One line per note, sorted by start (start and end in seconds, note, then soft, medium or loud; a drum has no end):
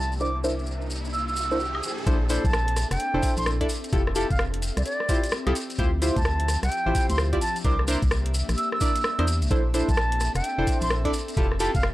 0.00 1.82 C2 medium
0.00 2.04 A#3 medium
0.00 2.04 D4 medium
0.00 2.03 G4 medium
0.00 2.03 E5 medium
0.00 0.14 A5 medium
0.00 riser medium
0.12 maracas soft
0.20 0.31 D4 medium
0.20 0.31 E4 medium
0.20 0.31 A#4 medium
0.20 0.31 C5 medium
0.20 0.37 D6 medium
0.20 maracas medium
0.44 0.54 D4 medium
0.44 0.54 E4 medium
0.44 0.54 A#4 medium
0.44 0.54 C5 loud
0.44 maracas medium
0.59 maracas soft
0.66 maracas medium
0.81 maracas soft
0.90 maracas medium
1.05 maracas soft
1.13 1.25 E6 medium
1.13 maracas soft
1.28 1.92 E6 medium
1.28 maracas soft
1.36 maracas medium
1.51 1.57 D4 medium
1.51 1.57 E4 medium
1.51 1.57 A#4 medium
1.51 1.57 C5 medium
1.51 maracas soft
1.60 maracas soft
1.75 high woodblock medium
1.83 maracas medium
1.98 maracas soft
2.06 2.39 A#1 loud
2.06 7.37 C4 medium
2.06 2.17 D4 medium
2.06 3.68 D4 medium
2.06 2.17 E4 medium
2.06 5.52 A4 medium
2.06 2.17 A4 medium
2.06 2.17 C5 medium
2.06 11.94 E5 medium
2.06 kick loud
2.06 closed hi-hat medium
2.06 maracas soft
2.29 2.45 D4 medium
2.29 2.45 E4 medium
2.29 2.45 A4 medium
2.29 2.45 C5 medium
2.29 open hi-hat loud
2.29 maracas medium
2.44 2.85 A#1 loud
2.44 2.88 A5 medium
2.44 kick loud
2.44 closed hi-hat soft
2.44 maracas medium
2.53 cross-stick loud
2.53 maracas soft
2.68 closed hi-hat medium
2.76 cross-stick medium
2.76 open hi-hat loud
2.76 maracas medium
2.91 2.97 F1 medium
2.91 3.35 G5 medium
2.91 cross-stick medium
2.91 closed hi-hat medium
2.91 maracas medium
2.99 closed hi-hat medium
2.99 maracas soft
3.14 3.21 F1 medium
3.14 3.57 D4 medium
3.14 3.57 E4 medium
3.14 3.57 A4 medium
3.14 3.57 C5 medium
3.22 kick loud
3.22 open hi-hat loud
3.22 maracas medium
3.37 3.66 A#1 medium
3.37 3.50 C6 medium
3.37 closed hi-hat medium
3.37 maracas medium
3.46 cross-stick loud
3.46 maracas soft
3.61 3.67 D4 loud
3.61 3.67 E4 medium
3.61 3.67 A4 medium
3.61 3.67 D5 loud
3.61 kick medium
3.61 closed hi-hat medium
3.69 9.47 G4 medium
3.69 open hi-hat medium
3.69 maracas loud
3.84 closed hi-hat soft
3.84 maracas medium
3.92 4.25 F1 loud
3.92 4.03 E4 medium
3.92 4.03 F4 medium
3.92 4.03 G4 medium
3.92 4.03 A4 medium
3.92 kick loud
3.92 closed hi-hat medium
3.92 maracas soft
4.07 cross-stick medium
4.15 4.26 E4 medium
4.15 4.26 F4 medium
4.15 4.26 G4 medium
4.15 4.26 A4 loud
4.15 4.27 A5 medium
4.15 open hi-hat loud
4.15 maracas loud
4.30 4.71 F1 loud
4.30 4.43 F5 medium
4.30 kick loud
4.30 closed hi-hat soft
4.30 maracas medium
4.39 cross-stick loud
4.39 maracas soft
4.54 closed hi-hat medium
4.62 open hi-hat medium
4.62 maracas medium
4.77 4.83 C2 medium
4.77 4.84 D5 medium
4.77 cross-stick medium
4.77 closed hi-hat medium
4.77 maracas medium
4.85 5.32 D5 loud
4.85 closed hi-hat medium
4.85 maracas soft
5.00 cross-stick medium
5.09 5.19 E4 medium
5.09 5.19 F4 medium
5.09 5.19 G4 medium
5.09 5.19 C5 loud
5.09 kick loud
5.09 open hi-hat loud
5.09 maracas loud
5.24 closed hi-hat medium
5.24 maracas medium
5.32 cross-stick loud
5.32 maracas soft
5.47 5.53 C2 loud
5.47 5.53 E4 medium
5.47 5.53 F4 medium
5.47 5.53 G4 medium
5.47 5.53 A4 medium
5.47 closed hi-hat medium
5.47 high woodblock medium
5.55 7.39 F3 medium
5.55 open hi-hat medium
5.55 maracas medium
5.70 closed hi-hat soft
5.70 maracas medium
5.78 6.11 D2 loud
5.78 5.89 E4 medium
5.78 5.89 F4 medium
5.78 5.89 G4 medium
5.78 5.89 C5 loud
5.78 kick loud
5.78 closed hi-hat medium
5.78 maracas soft
6.02 6.17 E4 medium
6.02 6.17 F4 medium
6.02 6.17 G4 medium
6.02 6.17 C5 medium
6.02 open hi-hat loud
6.02 maracas loud
6.16 6.57 D2 loud
6.16 6.60 A5 medium
6.16 kick loud
6.16 closed hi-hat soft
6.16 maracas medium
6.25 cross-stick loud
6.25 maracas soft
6.40 closed hi-hat medium
6.48 cross-stick medium
6.48 open hi-hat medium
6.48 maracas loud
6.63 6.69 C2 medium
6.63 7.07 G5 loud
6.63 cross-stick medium
6.63 closed hi-hat medium
6.63 maracas medium
6.72 closed hi-hat medium
6.72 maracas soft
6.86 6.93 A1 medium
6.86 7.29 E4 medium
6.86 7.29 F4 medium
6.86 7.29 G4 medium
6.86 7.29 C5 medium
6.95 kick loud
6.95 open hi-hat loud
6.95 maracas loud
7.10 7.38 D2 loud
7.10 7.22 C6 medium
7.10 closed hi-hat medium
7.10 maracas medium
7.18 cross-stick loud
7.18 maracas soft
7.33 7.39 E4 loud
7.33 7.39 F4 loud
7.33 7.39 G4 medium
7.33 7.39 D5 loud
7.33 kick medium
7.33 closed hi-hat medium
7.41 9.49 A#3 medium
7.41 11.10 D4 medium
7.41 7.58 A5 medium
7.41 open hi-hat medium
7.41 maracas loud
7.56 closed hi-hat soft
7.56 maracas medium
7.64 7.97 C2 loud
7.64 7.75 D4 medium
7.64 7.75 E4 medium
7.64 7.75 A#4 medium
7.64 7.75 C5 medium
7.64 7.81 D6 medium
7.64 kick loud
7.64 closed hi-hat medium
7.64 maracas soft
7.79 cross-stick medium
7.88 7.98 D4 loud
7.88 7.98 E4 medium
7.88 7.98 A#4 loud
7.88 7.98 C5 loud
7.88 open hi-hat loud
7.88 maracas loud
8.02 8.43 C2 loud
8.02 kick loud
8.02 closed hi-hat soft
8.02 maracas medium
8.11 cross-stick loud
8.11 maracas soft
8.26 closed hi-hat medium
8.34 open hi-hat medium
8.34 maracas medium
8.49 8.56 A#1 medium
8.49 cross-stick medium
8.49 closed hi-hat medium
8.49 maracas medium
8.58 8.69 E6 medium
8.58 closed hi-hat medium
8.58 maracas soft
8.72 9.36 E6 medium
8.72 cross-stick medium
8.81 8.91 D4 medium
8.81 8.91 E4 medium
8.81 8.91 A#4 medium
8.81 8.91 D5 loud
8.81 kick loud
8.81 open hi-hat loud
8.81 maracas loud
8.96 closed hi-hat medium
8.96 maracas medium
9.04 cross-stick loud
9.04 maracas soft
9.19 9.43 E2 medium
9.19 9.25 D4 medium
9.19 9.25 E4 medium
9.19 9.25 A#4 medium
9.19 9.25 C5 loud
9.19 closed hi-hat medium
9.19 high woodblock medium
9.27 open hi-hat medium
9.27 maracas medium
9.42 9.48 C2 loud
9.42 closed hi-hat soft
9.42 maracas medium
9.50 9.83 A#1 loud
9.50 11.94 C4 medium
9.50 9.61 D4 medium
9.50 9.61 E4 medium
9.50 11.94 A4 medium
9.50 9.61 A4 medium
9.50 9.61 C5 loud
9.50 kick loud
9.50 closed hi-hat medium
9.50 maracas soft
9.74 9.90 D4 medium
9.74 9.90 E4 medium
9.74 9.90 A4 medium
9.74 9.90 C5 medium
9.74 open hi-hat loud
9.74 maracas loud
9.89 10.29 A#1 loud
9.89 10.32 A5 medium
9.89 kick loud
9.89 closed hi-hat soft
9.89 maracas medium
9.97 cross-stick loud
9.97 maracas soft
10.12 closed hi-hat medium
10.20 cross-stick medium
10.20 open hi-hat medium
10.20 maracas medium
10.35 10.42 F1 medium
10.35 10.79 G5 loud
10.35 cross-stick medium
10.35 closed hi-hat medium
10.35 maracas medium
10.44 closed hi-hat medium
10.44 maracas soft
10.58 10.65 F1 medium
10.58 11.01 D4 medium
10.58 11.01 E4 medium
10.58 11.01 A4 medium
10.58 11.01 C5 medium
10.67 kick loud
10.67 open hi-hat loud
10.67 maracas medium
10.81 11.10 A#1 loud
10.81 10.94 C6 medium
10.81 closed hi-hat medium
10.81 maracas medium
10.90 cross-stick loud
10.90 maracas soft
11.05 11.11 D4 loud
11.05 11.11 E4 medium
11.05 11.11 A4 medium
11.05 11.11 D5 loud
11.05 kick medium
11.05 closed hi-hat medium
11.13 11.94 G4 medium
11.13 open hi-hat medium
11.13 maracas medium
11.28 closed hi-hat soft
11.28 maracas medium
11.37 11.69 F1 loud
11.37 11.47 E4 medium
11.37 11.47 F4 medium
11.37 11.47 G4 medium
11.37 11.47 A4 medium
11.37 kick loud
11.37 closed hi-hat medium
11.37 maracas soft
11.52 cross-stick medium
11.60 11.70 E4 loud
11.60 11.70 F4 medium
11.60 11.70 G4 medium
11.60 11.70 A4 loud
11.60 11.72 A5 medium
11.60 open hi-hat loud
11.60 maracas medium
11.74 11.94 F1 loud
11.74 11.87 F5 medium
11.74 kick loud
11.74 closed hi-hat soft
11.74 maracas medium
11.83 cross-stick loud
11.83 maracas soft